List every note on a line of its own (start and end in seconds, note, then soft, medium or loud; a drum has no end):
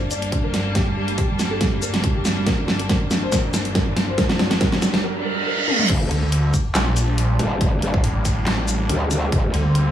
0.00 5.00 G2 medium
0.00 5.00 G3 medium
0.00 5.00 A#3 medium
0.00 5.00 D4 medium
0.00 0.09 D4 medium
0.00 riser medium
0.11 0.21 D5 medium
0.11 closed hi-hat medium
0.11 shaker medium
0.22 0.31 D4 medium
0.22 closed hi-hat soft
0.32 0.42 D4 medium
0.32 kick medium
0.32 closed hi-hat medium
0.44 0.52 A#4 medium
0.54 0.64 D4 medium
0.54 snare medium
0.54 open hi-hat medium
0.65 0.74 D4 medium
0.75 0.85 G4 medium
0.75 kick loud
0.75 snare medium
0.75 closed hi-hat medium
0.87 0.95 G3 medium
0.96 1.06 G3 medium
1.08 1.17 G3 medium
1.08 closed hi-hat medium
1.18 1.28 G4 medium
1.18 kick medium
1.18 closed hi-hat medium
1.29 1.38 G3 medium
1.39 1.49 G3 medium
1.39 snare medium
1.39 closed hi-hat medium
1.39 shaker medium
1.51 1.59 A4 medium
1.61 1.71 G3 medium
1.61 kick loud
1.61 snare medium
1.61 closed hi-hat medium
1.72 1.81 G3 medium
1.82 1.92 A#4 medium
1.82 closed hi-hat medium
1.82 shaker medium
1.94 2.02 G3 medium
1.94 snare medium
1.94 closed hi-hat soft
2.04 2.14 G3 medium
2.04 kick loud
2.04 closed hi-hat medium
2.15 2.24 G4 medium
2.25 2.35 G3 medium
2.25 snare medium
2.25 open hi-hat medium
2.25 shaker medium
2.37 2.45 G3 medium
2.47 2.56 A#4 medium
2.47 kick loud
2.47 snare medium
2.47 closed hi-hat medium
2.58 2.67 D4 medium
2.68 2.78 D4 medium
2.68 snare medium
2.79 2.88 D4 medium
2.79 closed hi-hat soft
2.89 2.99 A#4 medium
2.89 kick loud
2.89 snare medium
2.89 closed hi-hat medium
3.01 3.09 D4 medium
3.11 3.21 D4 medium
3.11 snare medium
3.11 closed hi-hat soft
3.11 shaker medium
3.22 3.31 C5 medium
3.32 3.42 A#4 medium
3.32 kick loud
3.32 snare medium
3.32 closed hi-hat medium
3.32 shaker medium
3.44 3.52 D4 medium
3.54 3.64 D4 medium
3.54 snare medium
3.54 closed hi-hat soft
3.54 shaker medium
3.65 3.74 D4 medium
3.65 closed hi-hat soft
3.75 3.85 A#4 medium
3.75 kick loud
3.75 snare medium
3.75 closed hi-hat medium
3.86 3.95 D4 medium
3.96 4.06 D4 medium
3.96 snare medium
3.96 open hi-hat medium
4.08 4.16 C5 medium
4.18 4.28 A#4 loud
4.18 kick loud
4.18 snare medium
4.18 closed hi-hat medium
4.29 4.38 D4 medium
4.29 snare medium
4.39 4.49 D4 medium
4.39 snare loud
4.51 4.59 D4 medium
4.51 snare medium
4.51 closed hi-hat soft
4.61 4.71 A#4 loud
4.61 kick loud
4.61 snare loud
4.61 closed hi-hat medium
4.72 4.81 D4 medium
4.72 snare medium
4.82 4.92 D4 medium
4.82 snare loud
4.82 closed hi-hat soft
4.82 shaker medium
4.94 5.02 D4 medium
4.94 snare medium
5.04 5.14 A#4 loud
5.04 reverse cymbal medium
5.15 5.24 D4 medium
5.25 5.35 A#4 loud
5.36 5.45 D4 medium
5.47 5.56 A#4 loud
5.58 5.66 D4 medium
5.68 5.78 A#4 loud
5.68 high tom medium
5.79 5.88 D4 medium
5.79 mid tom medium
5.89 6.09 G1 medium
5.89 9.91 G3 medium
5.89 9.91 A#3 medium
5.89 9.29 D4 medium
5.89 kick loud
5.89 closed hi-hat medium
5.89 crash loud
6.11 6.52 D2 medium
6.11 closed hi-hat medium
6.32 closed hi-hat medium
6.54 kick medium
6.54 closed hi-hat medium
6.54 shaker medium
6.75 7.38 A#1 medium
6.75 snare loud
6.75 clap medium
6.75 closed hi-hat medium
6.75 shaker medium
6.97 closed hi-hat medium
6.97 shaker medium
7.18 closed hi-hat medium
7.39 7.59 G1 loud
7.39 open hi-hat medium
7.61 7.81 G1 medium
7.61 kick loud
7.61 closed hi-hat medium
7.82 8.02 G1 loud
7.82 closed hi-hat medium
7.94 kick loud
8.04 8.24 A1 loud
8.04 closed hi-hat medium
8.25 8.88 A1 loud
8.25 kick medium
8.25 closed hi-hat medium
8.25 shaker medium
8.47 snare loud
8.47 clap medium
8.47 closed hi-hat medium
8.68 closed hi-hat medium
8.68 shaker medium
8.89 9.31 D2 loud
8.89 closed hi-hat medium
9.11 open hi-hat medium
9.11 shaker medium
9.32 9.52 G1 medium
9.32 9.91 C4 medium
9.32 kick loud
9.32 closed hi-hat medium
9.54 9.91 D2 medium
9.54 closed hi-hat medium
9.75 closed hi-hat medium